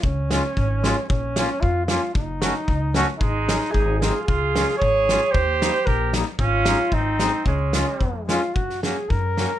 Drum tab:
HH |--p---p-|--p---p-|--p---p-|--p---p-|
SD |--o---o-|--o---o-|--o---o-|--oo--o-|
BD |o---o---|o---o---|o---o---|o---o---|

HH |--p---p-|--p---p-|--p---p-|--p---p-|
SD |--oo--o-|--o---o-|--o---o-|--o---o-|
BD |o---o---|o---o---|o---o---|o---o---|

HH |--------|
SD |-oo---o-|
BD |o---o---|